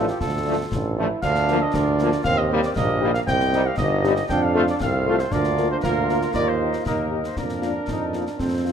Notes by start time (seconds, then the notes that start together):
Already playing: A1 F4 A4
0.08 G4, snare
0.21 D2 F4 A4, concert bass drum, snare
0.46 F3 A3 D4
0.71 A1 D4, concert bass drum, snare
0.98 F3 A3 D4 E4
1.22 D2 D4 F4 A#4 F5, concert bass drum, snare, crash
1.35 snare
1.48 F3 A#3 F4, snare
1.62 D#5
1.74 D2 F4 A#4 D5, concert bass drum, snare
1.99 F3 A#3 F4, snare
2.12 snare
2.24 D#2 C4 G4 A#4 F5, concert bass drum, snare
2.38 D#5
2.51 G3 A#3 D#4 G4
2.63 D5, snare
2.76 A#1 A#3 G4 A#4 D#5, concert bass drum, snare
3.01 G3 A#3 D#4 G4
3.14 F5, snare
3.27 C2 C4 G4 D#5 G5, concert bass drum, snare
3.40 snare
3.52 G3 C4 D#4 G4, snare
3.66 F5
3.77 G1 D#4 G4 D#5, concert bass drum, snare
4.03 G3 C4 D#4 G4, snare
4.16 snare
4.29 F2 D4 A4 F5 G5, concert bass drum, snare
4.43 F5
4.55 A3 C4 F4 A4
4.67 D5, snare
4.80 C2 C4 A4 F5, concert bass drum, snare
5.06 A3 C4 F4 A4
5.19 C5, snare
5.31 D2 A#3 D4 F4 A#4 D5 F5, concert bass drum, snare, crash
5.44 snare
5.57 A#3 F4 A#4, snare
5.71 C5
5.82 D2 A#3 F4 A#4 F5, concert bass drum, snare
6.09 A#3 F4 A#4, snare
6.21 snare
6.34 D#2 A#3 D#4 A#4 D5 D#5, concert bass drum, snare
6.48 C5
6.61 A#3 D#4 G4
6.73 snare
6.85 D#2 A#3 D#4 A#4 D#5, concert bass drum, snare
7.11 A#3 D#4 G4
7.24 C5, snare
7.36 F2 A#3 D4 A#4 D5, concert bass drum, snare
7.49 snare
7.62 A#3 D4 F4, snare
7.88 F2 D#4, concert bass drum, snare
8.13 A#3 D4 F4, snare
8.27 D4, snare
8.38 F2 C4 A4 C5, concert bass drum, snare
8.64 A3 C4 F4